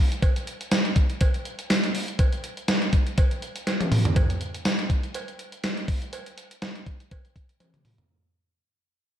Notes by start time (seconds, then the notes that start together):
0.12 closed hi-hat
0.22 kick, closed hi-hat, cowbell
0.36 closed hi-hat
0.47 closed hi-hat
0.61 closed hi-hat
0.71 snare, closed hi-hat, tambourine, cowbell
0.85 closed hi-hat
0.96 kick, closed hi-hat
1.10 closed hi-hat
1.21 kick, closed hi-hat, cowbell
1.34 closed hi-hat
1.45 closed hi-hat
1.59 closed hi-hat
1.70 snare, closed hi-hat, tambourine, cowbell
1.84 closed hi-hat
1.95 open hi-hat
2.08 closed hi-hat
2.19 kick, closed hi-hat, cowbell
2.33 closed hi-hat
2.44 closed hi-hat
2.57 closed hi-hat
2.68 snare, closed hi-hat, tambourine, cowbell
2.82 closed hi-hat
2.93 kick, closed hi-hat
3.07 closed hi-hat
3.18 kick, closed hi-hat, cowbell
3.31 closed hi-hat
3.42 closed hi-hat
3.56 closed hi-hat
3.67 snare, closed hi-hat, cowbell
3.81 closed hi-hat, high tom
3.92 mid tom, open hi-hat
4.05 closed hi-hat, floor tom
4.16 kick, closed hi-hat, cowbell
4.30 closed hi-hat
4.41 closed hi-hat
4.54 closed hi-hat
4.65 snare, closed hi-hat, tambourine, cowbell
4.79 closed hi-hat
4.90 kick, closed hi-hat
5.03 closed hi-hat
5.14 closed hi-hat, cowbell
5.28 closed hi-hat
5.39 closed hi-hat
5.52 closed hi-hat
5.64 snare, closed hi-hat, tambourine, cowbell
5.77 closed hi-hat
5.88 kick, open hi-hat
6.02 closed hi-hat
6.13 closed hi-hat, cowbell
6.26 closed hi-hat
6.38 closed hi-hat
6.51 closed hi-hat
6.62 snare, closed hi-hat, cowbell
6.75 closed hi-hat
6.86 kick, closed hi-hat
7.00 closed hi-hat
7.11 kick, closed hi-hat, cowbell
7.25 closed hi-hat
7.36 kick, closed hi-hat
7.49 closed hi-hat
7.60 closed hi-hat, high tom, cowbell
7.74 closed hi-hat, mid tom
7.85 mid tom, open hi-hat
7.98 closed hi-hat, floor tom